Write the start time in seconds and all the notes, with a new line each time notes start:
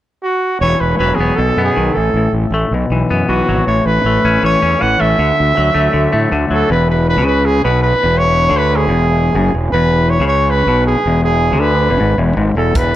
0.23 F#4
0.61 E1 E3 C#5
0.81 E1 B4
0.98 E1 F#3 B4
1.15 E1 G#4
1.20 B3
1.36 B1 B2 A4
1.57 F#2 B3
1.64 G#4
1.76 B1 D#3
1.93 A1 A2 A4
2.14 A1 A2
2.33 A1
2.50 A1 A3
2.71 B1 B2
2.90 B1 E3
3.11 F#2 B3
3.29 B1 E3 F#4
3.49 G#1 F#3
3.67 A1 A2 C#5
3.86 A1 B4
4.04 A1 A3
4.24 A1 C#4
4.43 A1 E3 C#5
4.62 E2 C#4
4.81 A1 E3 F#5
5.00 A1 A3 E5
5.18 D2 D3
5.40 D2
5.57 D2 F#3
5.75 D2 A3
5.93 D2 D3
6.13 A2 A3
6.32 D2 D3
6.50 D2 F#3 A4
6.70 E1 E2 B4
6.90 B4
7.09 B4
7.17 C#2 C#3
7.27 B4
7.46 G#4
7.65 B1 B2 B4
7.83 B4
7.93 muted overdriven electric guitar stroke, muted fingered electric bass stroke
8.03 E1 E2
8.18 C#5
8.50 D2 D3
8.57 B4
8.76 G#4
8.88 E1 E2
9.34 F#1 F#2
9.54 E1 E2
9.72 E1 E2 B4
10.10 C#5
10.19 C#2 C#3
10.28 C#5
10.50 B4
10.67 B1 B2
10.87 G#4
10.96 muted fingered electric bass stroke, muted overdriven electric guitar stroke
11.05 E1 E2
11.24 G#4
11.52 D2 D3
11.60 B4
11.90 E1 E2
12.00 G#1 G#2
12.18 E1 E2
12.37 G#1 G#2
12.55 E1 E2 A4
12.75 E1 E2 B4, kick, closed hi-hat